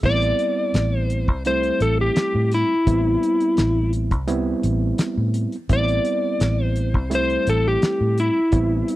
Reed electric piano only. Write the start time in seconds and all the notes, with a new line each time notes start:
0.03 G3 B3 C4 E4
1.46 G3 A3 C4 E4
2.87 G3 B3 C4 E4
4.27 G3 B3 C4 E4
5.69 G3 B3 C4 E4
7.10 G3 A3 C4 E4
8.52 G3 B3 C4 E4